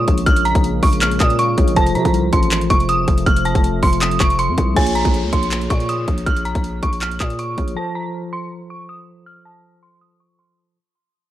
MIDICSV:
0, 0, Header, 1, 7, 480
1, 0, Start_track
1, 0, Key_signature, -5, "minor"
1, 0, Tempo, 375000
1, 339, Time_signature, 4, 2, 24, 8
1, 14474, End_track
2, 0, Start_track
2, 0, Title_t, "Synth bell"
2, 0, Program_c, 0, 98
2, 0, Note_on_c, 0, 87, 74
2, 311, Note_off_c, 0, 87, 0
2, 338, Note_on_c, 0, 89, 107
2, 545, Note_off_c, 0, 89, 0
2, 579, Note_on_c, 0, 82, 84
2, 786, Note_off_c, 0, 82, 0
2, 1058, Note_on_c, 0, 85, 85
2, 1265, Note_off_c, 0, 85, 0
2, 1300, Note_on_c, 0, 89, 78
2, 1506, Note_off_c, 0, 89, 0
2, 1539, Note_on_c, 0, 87, 83
2, 1746, Note_off_c, 0, 87, 0
2, 1779, Note_on_c, 0, 85, 79
2, 2230, Note_off_c, 0, 85, 0
2, 2259, Note_on_c, 0, 81, 107
2, 2466, Note_off_c, 0, 81, 0
2, 2498, Note_on_c, 0, 82, 79
2, 2705, Note_off_c, 0, 82, 0
2, 2978, Note_on_c, 0, 84, 95
2, 3185, Note_off_c, 0, 84, 0
2, 3458, Note_on_c, 0, 85, 91
2, 3665, Note_off_c, 0, 85, 0
2, 3699, Note_on_c, 0, 87, 90
2, 4150, Note_off_c, 0, 87, 0
2, 4178, Note_on_c, 0, 89, 111
2, 4385, Note_off_c, 0, 89, 0
2, 4421, Note_on_c, 0, 81, 85
2, 4627, Note_off_c, 0, 81, 0
2, 4898, Note_on_c, 0, 84, 79
2, 5105, Note_off_c, 0, 84, 0
2, 5138, Note_on_c, 0, 87, 91
2, 5345, Note_off_c, 0, 87, 0
2, 5379, Note_on_c, 0, 85, 87
2, 5586, Note_off_c, 0, 85, 0
2, 5618, Note_on_c, 0, 84, 91
2, 6070, Note_off_c, 0, 84, 0
2, 6099, Note_on_c, 0, 80, 96
2, 6306, Note_off_c, 0, 80, 0
2, 6339, Note_on_c, 0, 82, 82
2, 6546, Note_off_c, 0, 82, 0
2, 6819, Note_on_c, 0, 84, 76
2, 7026, Note_off_c, 0, 84, 0
2, 7300, Note_on_c, 0, 85, 80
2, 7506, Note_off_c, 0, 85, 0
2, 7539, Note_on_c, 0, 87, 72
2, 7990, Note_off_c, 0, 87, 0
2, 8018, Note_on_c, 0, 89, 101
2, 8225, Note_off_c, 0, 89, 0
2, 8259, Note_on_c, 0, 82, 81
2, 8466, Note_off_c, 0, 82, 0
2, 8738, Note_on_c, 0, 85, 85
2, 8945, Note_off_c, 0, 85, 0
2, 8979, Note_on_c, 0, 89, 74
2, 9186, Note_off_c, 0, 89, 0
2, 9220, Note_on_c, 0, 87, 77
2, 9426, Note_off_c, 0, 87, 0
2, 9460, Note_on_c, 0, 85, 74
2, 9910, Note_off_c, 0, 85, 0
2, 9940, Note_on_c, 0, 81, 102
2, 10146, Note_off_c, 0, 81, 0
2, 10179, Note_on_c, 0, 82, 76
2, 10386, Note_off_c, 0, 82, 0
2, 10659, Note_on_c, 0, 84, 92
2, 10866, Note_off_c, 0, 84, 0
2, 11139, Note_on_c, 0, 85, 85
2, 11346, Note_off_c, 0, 85, 0
2, 11379, Note_on_c, 0, 87, 84
2, 11830, Note_off_c, 0, 87, 0
2, 11858, Note_on_c, 0, 89, 102
2, 12065, Note_off_c, 0, 89, 0
2, 12101, Note_on_c, 0, 81, 78
2, 12307, Note_off_c, 0, 81, 0
2, 12578, Note_on_c, 0, 84, 77
2, 12785, Note_off_c, 0, 84, 0
2, 12817, Note_on_c, 0, 87, 85
2, 13025, Note_off_c, 0, 87, 0
2, 13059, Note_on_c, 0, 85, 81
2, 13266, Note_off_c, 0, 85, 0
2, 13297, Note_on_c, 0, 84, 85
2, 13749, Note_off_c, 0, 84, 0
2, 14474, End_track
3, 0, Start_track
3, 0, Title_t, "Tine electric piano"
3, 0, Program_c, 1, 4
3, 0, Control_c, 1, 64, 127
3, 0, Note_on_c, 1, 58, 68
3, 0, Note_on_c, 1, 65, 65
3, 0, Note_on_c, 1, 68, 63
3, 0, Note_on_c, 1, 73, 78
3, 1953, Note_off_c, 1, 58, 0
3, 1961, Note_off_c, 1, 65, 0
3, 1968, Note_off_c, 1, 68, 0
3, 1976, Note_off_c, 1, 73, 0
3, 2009, Note_on_c, 1, 58, 54
3, 2017, Note_on_c, 1, 65, 48
3, 2024, Note_on_c, 1, 68, 46
3, 2032, Note_on_c, 1, 73, 59
3, 2241, Note_off_c, 1, 65, 0
3, 2241, Note_on_c, 1, 53, 66
3, 2254, Note_off_c, 1, 58, 0
3, 2256, Note_on_c, 1, 65, 61
3, 2262, Note_off_c, 1, 68, 0
3, 2265, Note_off_c, 1, 73, 0
3, 2272, Note_on_c, 1, 69, 69
3, 2278, Control_c, 1, 64, 0
3, 2287, Note_on_c, 1, 72, 82
3, 2529, Control_c, 1, 64, 127
3, 6039, Note_off_c, 1, 53, 0
3, 6046, Note_off_c, 1, 65, 0
3, 6054, Note_off_c, 1, 69, 0
3, 6062, Note_off_c, 1, 72, 0
3, 6069, Note_on_c, 1, 58, 67
3, 6085, Note_on_c, 1, 65, 59
3, 6100, Note_on_c, 1, 68, 59
3, 6115, Control_c, 1, 64, 0
3, 6116, Note_on_c, 1, 73, 75
3, 6371, Control_c, 1, 64, 127
3, 9633, Note_off_c, 1, 58, 0
3, 9641, Note_off_c, 1, 65, 0
3, 9648, Note_off_c, 1, 68, 0
3, 9656, Note_off_c, 1, 73, 0
3, 9689, Note_on_c, 1, 58, 49
3, 9696, Note_on_c, 1, 65, 47
3, 9704, Note_on_c, 1, 68, 46
3, 9712, Note_on_c, 1, 73, 54
3, 9920, Note_off_c, 1, 65, 0
3, 9920, Note_on_c, 1, 53, 66
3, 9934, Note_off_c, 1, 58, 0
3, 9936, Note_on_c, 1, 65, 60
3, 9941, Note_off_c, 1, 68, 0
3, 9945, Note_off_c, 1, 73, 0
3, 9951, Note_on_c, 1, 69, 66
3, 9957, Control_c, 1, 64, 0
3, 9967, Note_on_c, 1, 72, 78
3, 10207, Control_c, 1, 64, 127
3, 13718, Note_off_c, 1, 53, 0
3, 13726, Note_off_c, 1, 65, 0
3, 13734, Note_off_c, 1, 69, 0
3, 13742, Note_off_c, 1, 72, 0
3, 13798, Control_c, 1, 64, 0
3, 14474, End_track
4, 0, Start_track
4, 0, Title_t, "Ambient pad"
4, 0, Program_c, 2, 92
4, 0, Note_on_c, 2, 49, 76
4, 0, Note_on_c, 2, 56, 71
4, 0, Note_on_c, 2, 58, 87
4, 2220, Note_off_c, 2, 49, 0
4, 2220, Note_off_c, 2, 56, 0
4, 2220, Note_off_c, 2, 58, 0
4, 2258, Note_on_c, 2, 48, 78
4, 2258, Note_on_c, 2, 53, 70
4, 2258, Note_on_c, 2, 57, 85
4, 6060, Note_off_c, 2, 48, 0
4, 6060, Note_off_c, 2, 53, 0
4, 6060, Note_off_c, 2, 57, 0
4, 14474, End_track
5, 0, Start_track
5, 0, Title_t, "808-style bass"
5, 0, Program_c, 3, 38
5, 100, Note_on_c, 3, 34, 106
5, 330, Note_off_c, 3, 34, 0
5, 339, Note_on_c, 3, 34, 116
5, 691, Note_off_c, 3, 34, 0
5, 706, Note_on_c, 3, 34, 102
5, 1045, Note_off_c, 3, 34, 0
5, 1059, Note_on_c, 3, 34, 104
5, 1520, Note_off_c, 3, 34, 0
5, 1540, Note_on_c, 3, 46, 107
5, 2000, Note_off_c, 3, 46, 0
5, 2020, Note_on_c, 3, 34, 107
5, 2250, Note_off_c, 3, 34, 0
5, 2259, Note_on_c, 3, 29, 106
5, 2499, Note_on_c, 3, 48, 104
5, 2518, Note_off_c, 3, 29, 0
5, 2620, Note_off_c, 3, 48, 0
5, 2626, Note_on_c, 3, 36, 105
5, 2964, Note_off_c, 3, 36, 0
5, 2979, Note_on_c, 3, 33, 107
5, 3440, Note_off_c, 3, 33, 0
5, 3459, Note_on_c, 3, 29, 104
5, 3920, Note_off_c, 3, 29, 0
5, 3940, Note_on_c, 3, 29, 107
5, 4170, Note_off_c, 3, 29, 0
5, 4179, Note_on_c, 3, 29, 115
5, 4531, Note_off_c, 3, 29, 0
5, 4546, Note_on_c, 3, 29, 101
5, 4885, Note_off_c, 3, 29, 0
5, 4899, Note_on_c, 3, 29, 106
5, 5360, Note_off_c, 3, 29, 0
5, 5380, Note_on_c, 3, 29, 108
5, 5746, Note_on_c, 3, 41, 102
5, 5765, Note_off_c, 3, 29, 0
5, 5853, Note_off_c, 3, 41, 0
5, 5860, Note_on_c, 3, 36, 104
5, 6090, Note_off_c, 3, 36, 0
5, 6099, Note_on_c, 3, 34, 112
5, 6451, Note_off_c, 3, 34, 0
5, 6466, Note_on_c, 3, 34, 109
5, 6706, Note_on_c, 3, 37, 98
5, 6725, Note_off_c, 3, 34, 0
5, 6813, Note_off_c, 3, 37, 0
5, 6820, Note_on_c, 3, 34, 102
5, 7280, Note_off_c, 3, 34, 0
5, 7300, Note_on_c, 3, 46, 104
5, 7760, Note_off_c, 3, 46, 0
5, 7780, Note_on_c, 3, 34, 100
5, 8010, Note_off_c, 3, 34, 0
5, 8019, Note_on_c, 3, 34, 113
5, 8372, Note_off_c, 3, 34, 0
5, 8386, Note_on_c, 3, 34, 99
5, 8724, Note_off_c, 3, 34, 0
5, 8739, Note_on_c, 3, 34, 104
5, 9200, Note_off_c, 3, 34, 0
5, 9220, Note_on_c, 3, 46, 102
5, 9680, Note_off_c, 3, 46, 0
5, 9700, Note_on_c, 3, 34, 104
5, 9930, Note_off_c, 3, 34, 0
5, 14474, End_track
6, 0, Start_track
6, 0, Title_t, "Downlifter"
6, 0, Program_c, 4, 103
6, 6099, Note_on_c, 4, 60, 82
6, 9939, Note_off_c, 4, 60, 0
6, 14474, End_track
7, 0, Start_track
7, 0, Title_t, "Drums"
7, 98, Note_on_c, 9, 42, 64
7, 100, Note_on_c, 9, 36, 93
7, 226, Note_off_c, 9, 42, 0
7, 226, Note_on_c, 9, 42, 64
7, 228, Note_off_c, 9, 36, 0
7, 338, Note_off_c, 9, 42, 0
7, 338, Note_on_c, 9, 42, 81
7, 339, Note_on_c, 9, 36, 119
7, 466, Note_off_c, 9, 42, 0
7, 467, Note_off_c, 9, 36, 0
7, 467, Note_on_c, 9, 42, 81
7, 579, Note_off_c, 9, 42, 0
7, 579, Note_on_c, 9, 42, 51
7, 706, Note_on_c, 9, 36, 102
7, 707, Note_off_c, 9, 42, 0
7, 707, Note_on_c, 9, 42, 54
7, 820, Note_off_c, 9, 42, 0
7, 820, Note_on_c, 9, 42, 69
7, 834, Note_off_c, 9, 36, 0
7, 948, Note_off_c, 9, 42, 0
7, 1058, Note_on_c, 9, 46, 81
7, 1059, Note_on_c, 9, 36, 101
7, 1186, Note_off_c, 9, 46, 0
7, 1187, Note_off_c, 9, 36, 0
7, 1187, Note_on_c, 9, 42, 64
7, 1297, Note_off_c, 9, 42, 0
7, 1297, Note_on_c, 9, 42, 78
7, 1299, Note_on_c, 9, 39, 118
7, 1425, Note_off_c, 9, 42, 0
7, 1427, Note_off_c, 9, 39, 0
7, 1427, Note_on_c, 9, 42, 48
7, 1539, Note_off_c, 9, 42, 0
7, 1539, Note_on_c, 9, 39, 98
7, 1539, Note_on_c, 9, 42, 92
7, 1540, Note_on_c, 9, 36, 108
7, 1667, Note_off_c, 9, 39, 0
7, 1667, Note_off_c, 9, 42, 0
7, 1667, Note_on_c, 9, 42, 55
7, 1668, Note_off_c, 9, 36, 0
7, 1777, Note_off_c, 9, 42, 0
7, 1777, Note_on_c, 9, 42, 71
7, 1905, Note_off_c, 9, 42, 0
7, 2019, Note_on_c, 9, 42, 64
7, 2020, Note_on_c, 9, 36, 96
7, 2146, Note_off_c, 9, 42, 0
7, 2146, Note_on_c, 9, 42, 62
7, 2148, Note_off_c, 9, 36, 0
7, 2258, Note_off_c, 9, 42, 0
7, 2258, Note_on_c, 9, 42, 80
7, 2259, Note_on_c, 9, 36, 120
7, 2386, Note_off_c, 9, 42, 0
7, 2387, Note_off_c, 9, 36, 0
7, 2387, Note_on_c, 9, 42, 81
7, 2499, Note_off_c, 9, 42, 0
7, 2499, Note_on_c, 9, 42, 50
7, 2626, Note_off_c, 9, 42, 0
7, 2626, Note_on_c, 9, 36, 104
7, 2626, Note_on_c, 9, 42, 54
7, 2739, Note_off_c, 9, 42, 0
7, 2739, Note_on_c, 9, 42, 72
7, 2754, Note_off_c, 9, 36, 0
7, 2867, Note_off_c, 9, 42, 0
7, 2978, Note_on_c, 9, 42, 83
7, 2979, Note_on_c, 9, 36, 99
7, 3106, Note_off_c, 9, 42, 0
7, 3107, Note_off_c, 9, 36, 0
7, 3107, Note_on_c, 9, 42, 64
7, 3217, Note_off_c, 9, 42, 0
7, 3217, Note_on_c, 9, 42, 77
7, 3218, Note_on_c, 9, 39, 115
7, 3345, Note_off_c, 9, 42, 0
7, 3346, Note_off_c, 9, 39, 0
7, 3346, Note_on_c, 9, 42, 48
7, 3459, Note_off_c, 9, 42, 0
7, 3459, Note_on_c, 9, 36, 109
7, 3459, Note_on_c, 9, 42, 90
7, 3587, Note_off_c, 9, 36, 0
7, 3587, Note_off_c, 9, 42, 0
7, 3587, Note_on_c, 9, 42, 56
7, 3697, Note_off_c, 9, 42, 0
7, 3697, Note_on_c, 9, 42, 71
7, 3825, Note_off_c, 9, 42, 0
7, 3939, Note_on_c, 9, 42, 63
7, 3940, Note_on_c, 9, 36, 94
7, 4066, Note_off_c, 9, 42, 0
7, 4066, Note_on_c, 9, 42, 63
7, 4068, Note_off_c, 9, 36, 0
7, 4179, Note_off_c, 9, 42, 0
7, 4179, Note_on_c, 9, 36, 120
7, 4179, Note_on_c, 9, 42, 79
7, 4307, Note_off_c, 9, 36, 0
7, 4307, Note_off_c, 9, 42, 0
7, 4307, Note_on_c, 9, 42, 82
7, 4419, Note_off_c, 9, 42, 0
7, 4419, Note_on_c, 9, 42, 51
7, 4546, Note_off_c, 9, 42, 0
7, 4546, Note_on_c, 9, 36, 102
7, 4546, Note_on_c, 9, 42, 55
7, 4659, Note_off_c, 9, 42, 0
7, 4659, Note_on_c, 9, 42, 70
7, 4674, Note_off_c, 9, 36, 0
7, 4787, Note_off_c, 9, 42, 0
7, 4898, Note_on_c, 9, 46, 80
7, 4899, Note_on_c, 9, 36, 97
7, 5026, Note_off_c, 9, 46, 0
7, 5027, Note_off_c, 9, 36, 0
7, 5027, Note_on_c, 9, 42, 63
7, 5137, Note_off_c, 9, 42, 0
7, 5137, Note_on_c, 9, 42, 76
7, 5139, Note_on_c, 9, 39, 117
7, 5265, Note_off_c, 9, 42, 0
7, 5266, Note_on_c, 9, 42, 46
7, 5267, Note_off_c, 9, 39, 0
7, 5378, Note_off_c, 9, 42, 0
7, 5378, Note_on_c, 9, 42, 91
7, 5379, Note_on_c, 9, 36, 113
7, 5379, Note_on_c, 9, 39, 102
7, 5506, Note_off_c, 9, 42, 0
7, 5507, Note_off_c, 9, 36, 0
7, 5507, Note_off_c, 9, 39, 0
7, 5507, Note_on_c, 9, 42, 55
7, 5618, Note_off_c, 9, 42, 0
7, 5618, Note_on_c, 9, 42, 71
7, 5746, Note_off_c, 9, 42, 0
7, 5858, Note_on_c, 9, 42, 72
7, 5860, Note_on_c, 9, 36, 96
7, 5986, Note_off_c, 9, 42, 0
7, 5988, Note_off_c, 9, 36, 0
7, 6099, Note_on_c, 9, 36, 116
7, 6099, Note_on_c, 9, 42, 78
7, 6099, Note_on_c, 9, 49, 90
7, 6227, Note_off_c, 9, 36, 0
7, 6227, Note_off_c, 9, 42, 0
7, 6227, Note_off_c, 9, 49, 0
7, 6227, Note_on_c, 9, 42, 80
7, 6339, Note_off_c, 9, 42, 0
7, 6339, Note_on_c, 9, 42, 48
7, 6466, Note_on_c, 9, 36, 97
7, 6467, Note_off_c, 9, 42, 0
7, 6467, Note_on_c, 9, 42, 53
7, 6580, Note_off_c, 9, 42, 0
7, 6580, Note_on_c, 9, 42, 68
7, 6594, Note_off_c, 9, 36, 0
7, 6708, Note_off_c, 9, 42, 0
7, 6818, Note_on_c, 9, 42, 77
7, 6819, Note_on_c, 9, 36, 98
7, 6946, Note_off_c, 9, 42, 0
7, 6947, Note_off_c, 9, 36, 0
7, 6948, Note_on_c, 9, 42, 63
7, 7058, Note_off_c, 9, 42, 0
7, 7058, Note_on_c, 9, 42, 76
7, 7059, Note_on_c, 9, 39, 112
7, 7186, Note_off_c, 9, 42, 0
7, 7186, Note_on_c, 9, 42, 45
7, 7187, Note_off_c, 9, 39, 0
7, 7299, Note_off_c, 9, 42, 0
7, 7299, Note_on_c, 9, 42, 87
7, 7300, Note_on_c, 9, 36, 108
7, 7427, Note_off_c, 9, 42, 0
7, 7427, Note_on_c, 9, 42, 52
7, 7428, Note_off_c, 9, 36, 0
7, 7538, Note_off_c, 9, 42, 0
7, 7538, Note_on_c, 9, 42, 67
7, 7666, Note_off_c, 9, 42, 0
7, 7779, Note_on_c, 9, 42, 61
7, 7780, Note_on_c, 9, 36, 96
7, 7907, Note_off_c, 9, 42, 0
7, 7907, Note_on_c, 9, 42, 61
7, 7908, Note_off_c, 9, 36, 0
7, 8019, Note_off_c, 9, 42, 0
7, 8019, Note_on_c, 9, 36, 114
7, 8019, Note_on_c, 9, 42, 73
7, 8147, Note_off_c, 9, 36, 0
7, 8147, Note_off_c, 9, 42, 0
7, 8147, Note_on_c, 9, 42, 78
7, 8259, Note_off_c, 9, 42, 0
7, 8259, Note_on_c, 9, 42, 47
7, 8386, Note_off_c, 9, 42, 0
7, 8386, Note_on_c, 9, 36, 96
7, 8386, Note_on_c, 9, 42, 52
7, 8499, Note_off_c, 9, 42, 0
7, 8499, Note_on_c, 9, 42, 68
7, 8514, Note_off_c, 9, 36, 0
7, 8627, Note_off_c, 9, 42, 0
7, 8738, Note_on_c, 9, 42, 79
7, 8739, Note_on_c, 9, 36, 94
7, 8866, Note_off_c, 9, 42, 0
7, 8867, Note_off_c, 9, 36, 0
7, 8867, Note_on_c, 9, 42, 60
7, 8977, Note_off_c, 9, 42, 0
7, 8977, Note_on_c, 9, 42, 76
7, 8978, Note_on_c, 9, 39, 115
7, 9105, Note_off_c, 9, 42, 0
7, 9106, Note_off_c, 9, 39, 0
7, 9107, Note_on_c, 9, 42, 46
7, 9219, Note_off_c, 9, 42, 0
7, 9219, Note_on_c, 9, 39, 97
7, 9219, Note_on_c, 9, 42, 85
7, 9220, Note_on_c, 9, 36, 104
7, 9347, Note_off_c, 9, 39, 0
7, 9347, Note_off_c, 9, 42, 0
7, 9347, Note_on_c, 9, 42, 53
7, 9348, Note_off_c, 9, 36, 0
7, 9457, Note_off_c, 9, 42, 0
7, 9457, Note_on_c, 9, 42, 67
7, 9585, Note_off_c, 9, 42, 0
7, 9699, Note_on_c, 9, 42, 59
7, 9700, Note_on_c, 9, 36, 92
7, 9826, Note_off_c, 9, 42, 0
7, 9826, Note_on_c, 9, 42, 61
7, 9828, Note_off_c, 9, 36, 0
7, 9954, Note_off_c, 9, 42, 0
7, 14474, End_track
0, 0, End_of_file